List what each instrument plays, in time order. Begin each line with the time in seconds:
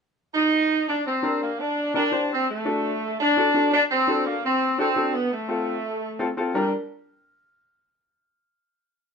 0.34 saxophone section D#4
0.89 saxophone section D4
1.06 saxophone section C4
1.23 upright piano D4 G4 A#4
1.43 saxophone section A#3
1.60 saxophone section D4
1.94 upright piano D4 G4 A#4, saxophone section D4
2.12 upright piano D4 G4 C5
2.32 saxophone section C4
2.50 saxophone section A3
2.65 upright piano D4 F#4 A4
3.20 saxophone section D4
3.37 upright piano D4 F#4 A4
3.54 upright piano D4 F#4 A4
3.74 saxophone section D4
3.91 saxophone section C4
4.08 upright piano D4 F#4 A4
4.26 saxophone section A#3
4.44 saxophone section C4
4.78 saxophone section C4, upright piano D4 F#4 A4
4.96 upright piano D4 F#4 A4
5.14 saxophone section B3
5.32 saxophone section A3
5.48 upright piano C4 F4 A4
6.19 upright piano C4 F4 A4
6.37 upright piano C4 F4 A4
6.55 saxophone section G3, upright piano D4 G4 A#4